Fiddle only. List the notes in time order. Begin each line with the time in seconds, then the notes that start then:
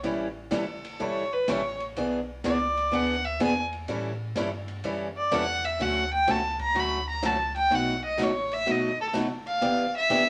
0.55 A4
1.02 C#5
1.33 B4
1.50 C#5
2.46 D5
2.95 F#5
3.25 E5
3.44 G#5
5.17 D5
5.35 F#5
5.65 E5
5.82 F#5
6.13 G5
6.31 A5
6.61 A#5
6.80 B5
7.09 A#5
7.26 A5
7.56 G5
7.75 F#5
8.04 D#5
8.23 C#5
8.53 E5
8.71 D#5
9.01 A4
9.47 F5
9.97 E5